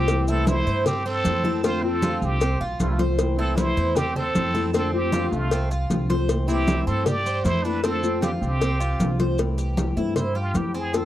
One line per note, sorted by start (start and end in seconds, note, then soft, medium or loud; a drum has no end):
0.00 0.61 C2 loud
0.00 0.28 C4 medium
0.00 0.31 G4 loud
0.00 0.27 C5 medium
0.08 0.27 C3 medium
0.08 0.27 E3 medium
0.08 0.27 A3 medium
0.08 0.28 C4 medium
0.08 0.27 E4 medium
0.08 cowbell loud
0.08 high conga soft
0.08 maracas medium
0.28 0.47 E3 medium
0.28 0.47 A3 medium
0.28 0.50 C4 medium
0.28 0.47 C4 medium
0.28 0.66 E4 medium
0.28 0.47 E4 medium
0.28 0.50 A4 loud
0.28 high conga soft
0.28 maracas medium
0.47 0.85 E3 medium
0.47 0.85 A3 medium
0.47 0.85 C4 medium
0.47 0.87 E4 medium
0.47 0.85 E4 medium
0.47 0.86 C5 loud
0.47 cowbell medium
0.47 high conga loud
0.47 maracas medium
0.67 1.21 G2 loud
0.67 0.86 C5 medium
0.67 maracas soft
0.86 1.05 C4 medium
0.86 1.05 G4 medium
0.86 1.04 G4 loud
0.86 muted nylon-string guitar stroke medium
0.86 cowbell loud
0.86 high conga soft
0.86 low conga medium
0.86 maracas medium
1.05 1.60 C4 medium
1.05 1.60 A4 loud
1.05 1.43 C5 medium
1.05 high conga soft
1.25 2.16 F2 medium
1.25 1.43 E3 medium
1.25 1.44 A3 medium
1.25 1.43 C4 medium
1.25 1.43 E4 medium
1.25 cowbell medium
1.25 high conga loud
1.25 maracas medium
1.44 1.63 E3 medium
1.44 1.63 A3 medium
1.44 1.63 C4 medium
1.44 1.63 E4 medium
1.44 1.63 A4 medium
1.44 high conga medium
1.44 maracas soft
1.63 1.82 D3 medium
1.63 1.82 A3 medium
1.63 2.02 C4 medium
1.63 1.83 C4 medium
1.63 1.85 F4 medium
1.63 1.82 F4 medium
1.63 1.87 C5 loud
1.63 cowbell loud
1.63 high conga soft
1.63 maracas medium
1.83 2.01 A3 medium
1.83 2.23 C4 medium
1.83 2.01 C4 medium
1.83 2.02 F4 medium
1.83 2.26 A4 loud
1.83 high conga soft
2.02 2.40 D3 medium
2.02 2.40 A3 medium
2.02 2.41 C4 medium
2.02 2.40 F4 medium
2.02 2.41 F4 medium
2.02 cowbell medium
2.02 high conga loud
2.02 maracas medium
2.22 2.58 C2 loud
2.22 2.61 C4 medium
2.22 2.62 G4 loud
2.22 high conga soft
2.22 maracas soft
2.41 2.60 C4 medium
2.41 muted nylon-string guitar stroke medium
2.41 cowbell loud
2.41 high conga soft
2.41 maracas medium
2.61 2.79 B1 medium
2.61 2.98 F4 medium
2.61 high conga soft
2.79 3.71 C2 medium
2.79 2.98 D3 soft
2.79 2.98 A3 medium
2.79 2.86 A3 medium
2.79 2.98 C4 medium
2.79 2.97 F4 medium
2.79 2.87 F4 medium
2.79 cowbell medium
2.79 high conga loud
2.79 maracas medium
2.84 2.92 G3 medium
2.84 2.93 E4 medium
2.90 3.00 A3 medium
2.90 3.00 F4 medium
2.98 3.18 A3 medium
2.98 3.18 C4 medium
2.98 3.17 F4 medium
2.98 3.37 C5 medium
2.98 cowbell medium
2.98 high conga medium
2.98 maracas soft
3.18 3.37 C3 medium
3.18 3.37 E3 medium
3.18 3.37 A3 medium
3.18 3.37 C4 medium
3.18 3.36 E4 medium
3.18 cowbell loud
3.18 high conga soft
3.18 maracas medium
3.38 3.56 E3 medium
3.38 3.56 A3 medium
3.38 3.58 C4 medium
3.38 3.56 C4 medium
3.38 3.57 E4 medium
3.38 3.76 E4 medium
3.38 3.59 A4 loud
3.38 high conga soft
3.57 3.95 E3 medium
3.57 3.96 A3 medium
3.57 3.96 C4 medium
3.57 3.98 E4 medium
3.57 3.96 E4 medium
3.57 3.98 C5 loud
3.57 cowbell medium
3.57 high conga loud
3.57 maracas medium
3.77 4.31 E2 medium
3.77 3.96 C5 medium
3.77 high conga soft
3.77 maracas soft
3.96 4.16 C4 medium
3.96 4.18 G4 loud
3.96 4.15 G4 medium
3.96 muted nylon-string guitar stroke medium
3.96 cowbell loud
3.96 high conga soft
3.96 low conga medium
3.96 maracas medium
4.16 4.73 C4 loud
4.16 4.74 A4 loud
4.16 4.54 C5 medium
4.16 high conga soft
4.16 low conga medium
4.35 5.26 F2 medium
4.35 4.54 E3 medium
4.35 4.54 A3 medium
4.35 4.54 C4 medium
4.35 4.53 E4 medium
4.35 cowbell medium
4.35 high conga medium
4.35 maracas medium
4.54 4.73 E3 medium
4.54 4.73 A3 medium
4.54 4.73 C4 medium
4.54 4.73 E4 medium
4.54 4.73 A4 medium
4.54 high conga medium
4.54 maracas soft
4.73 4.92 D3 medium
4.73 4.93 A3 medium
4.73 4.93 C4 medium
4.73 4.92 C4 medium
4.73 5.12 C4 medium
4.73 4.92 F4 medium
4.73 4.96 A4 loud
4.73 cowbell loud
4.73 high conga soft
4.73 maracas medium
4.93 5.11 A3 medium
4.93 5.34 C4 medium
4.93 5.12 C4 medium
4.93 5.12 F4 medium
4.93 5.35 G4 loud
4.93 high conga soft
5.12 5.50 D3 medium
5.12 5.50 A3 medium
5.12 5.50 C4 medium
5.12 5.51 F4 medium
5.12 5.50 F4 medium
5.12 cowbell medium
5.12 high conga loud
5.12 maracas medium
5.32 5.86 C2 medium
5.32 5.71 A3 medium
5.32 5.72 F4 medium
5.32 high conga soft
5.32 maracas soft
5.51 5.71 C4 medium
5.51 muted nylon-string guitar stroke medium
5.51 cowbell loud
5.51 high conga soft
5.51 maracas medium
5.71 6.09 F4 medium
5.71 high conga soft
5.71 maracas medium
5.90 6.81 C2 loud
5.90 6.09 D3 medium
5.90 6.09 A3 medium
5.90 6.09 C4 medium
5.90 6.08 F4 medium
5.90 cowbell medium
5.90 high conga medium
5.90 maracas medium
6.09 6.29 A3 medium
6.09 6.29 C4 medium
6.09 6.28 F4 medium
6.09 6.47 C5 medium
6.09 cowbell medium
6.09 high conga medium
6.09 maracas soft
6.29 6.48 C3 medium
6.29 6.48 E3 medium
6.29 6.48 A3 medium
6.29 6.48 C4 medium
6.29 6.47 E4 medium
6.29 cowbell loud
6.29 maracas medium
6.48 6.66 E3 medium
6.48 6.67 A3 medium
6.48 6.86 C4 medium
6.48 6.67 C4 medium
6.48 6.86 E4 medium
6.48 6.67 E4 medium
6.48 6.89 G4 loud
6.48 high conga soft
6.48 maracas medium
6.67 7.05 E3 medium
6.67 7.06 A3 medium
6.67 7.06 C4 medium
6.67 7.06 E4 medium
6.67 cowbell medium
6.67 high conga loud
6.67 maracas medium
6.86 7.41 G2 loud
6.86 7.07 C4 medium
6.86 7.09 A4 loud
6.86 7.06 C5 medium
6.86 high conga soft
6.86 maracas soft
7.05 7.46 G4 medium
7.05 7.25 G4 medium
7.05 7.48 D5 loud
7.05 muted nylon-string guitar stroke medium
7.05 cowbell loud
7.05 high conga soft
7.05 low conga medium
7.05 maracas medium
7.26 7.64 C5 medium
7.26 high conga soft
7.26 maracas medium
7.45 8.36 F2 medium
7.45 7.64 E3 medium
7.45 7.64 A3 medium
7.45 7.64 C4 medium
7.45 7.65 E4 medium
7.45 7.63 E4 medium
7.45 7.66 C5 loud
7.45 cowbell medium
7.45 high conga medium
7.45 maracas medium
7.63 7.83 E3 medium
7.63 7.83 A3 medium
7.63 7.83 C4 medium
7.63 7.82 D4 medium
7.63 7.83 E4 medium
7.63 7.84 A4 medium
7.63 7.83 B4 medium
7.63 maracas soft
7.83 8.02 D3 medium
7.83 8.03 A3 medium
7.83 8.19 C4 medium
7.83 8.22 C4 medium
7.83 8.03 C4 medium
7.83 8.02 F4 medium
7.83 8.20 A4 loud
7.83 cowbell loud
7.83 high conga soft
7.83 maracas medium
8.03 8.22 A3 medium
8.03 8.22 C4 medium
8.03 8.22 F4 medium
8.03 high conga soft
8.03 maracas medium
8.21 8.60 D3 medium
8.21 8.60 A3 medium
8.21 8.30 C4 medium
8.21 8.60 C4 medium
8.21 8.60 F4 medium
8.21 8.31 G4 medium
8.21 cowbell medium
8.21 high conga loud
8.21 maracas medium
8.41 8.96 C2 loud
8.41 9.15 C4 medium
8.41 9.15 G4 loud
8.41 maracas soft
8.61 8.80 C4 medium
8.61 muted nylon-string guitar stroke medium
8.61 cowbell loud
8.61 high conga soft
8.61 maracas medium
8.80 9.18 F4 medium
8.80 high conga soft
8.80 maracas medium
9.00 9.91 C2 medium
9.00 9.18 D3 medium
9.00 9.19 A3 medium
9.00 9.18 C4 medium
9.00 9.18 F4 medium
9.00 cowbell medium
9.00 high conga loud
9.00 maracas medium
9.19 9.38 A3 medium
9.19 9.38 C4 medium
9.19 9.38 F4 medium
9.19 9.38 C5 medium
9.19 cowbell medium
9.19 high conga medium
9.19 maracas soft
9.38 9.77 C3 medium
9.38 9.76 E3 medium
9.38 9.77 A3 medium
9.38 9.77 C4 medium
9.38 9.77 E4 medium
9.38 cowbell loud
9.38 high conga soft
9.38 maracas medium
9.58 9.96 G4 medium
9.58 high conga soft
9.58 maracas medium
9.77 9.96 E3 medium
9.77 9.96 A3 medium
9.77 9.96 C4 medium
9.77 9.95 E4 medium
9.77 cowbell medium
9.77 high conga loud
9.77 maracas medium
9.96 10.51 G2 medium
9.96 10.15 E3 medium
9.96 10.15 A3 medium
9.96 10.15 C4 medium
9.96 10.15 E4 medium
9.96 10.16 E4 medium
9.96 high conga soft
9.96 maracas soft
10.16 10.37 E4 medium
10.16 10.35 C5 medium
10.16 muted nylon-string guitar stroke medium
10.16 cowbell loud
10.16 high conga soft
10.16 low conga medium
10.16 maracas medium
10.35 10.58 F4 medium
10.35 10.73 G4 medium
10.35 high conga soft
10.54 11.05 F2 medium
10.54 10.93 E3 soft
10.54 10.93 A3 medium
10.54 10.93 C4 medium
10.54 10.94 E4 medium
10.54 10.75 G4 medium
10.54 cowbell medium
10.54 high conga medium
10.54 maracas medium
10.74 10.93 C4 medium
10.74 10.97 G#4 medium
10.74 maracas soft
10.93 11.05 D3 medium
10.93 11.05 A3 medium
10.93 11.05 C4 medium
10.93 11.05 F4 medium
10.93 11.05 A4 medium
10.93 cowbell loud
10.93 high conga soft
10.93 maracas medium